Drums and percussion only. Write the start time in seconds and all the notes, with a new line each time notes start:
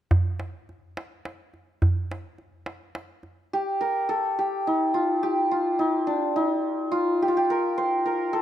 0.11 tombak dum
0.40 tombak tek
0.69 tombak ka
0.97 tombak tek
1.25 tombak tek
1.53 tombak ka
1.82 tombak dum
2.12 tombak tek
2.38 tombak ka
2.66 tombak tek
2.95 tombak tek
3.23 tombak ka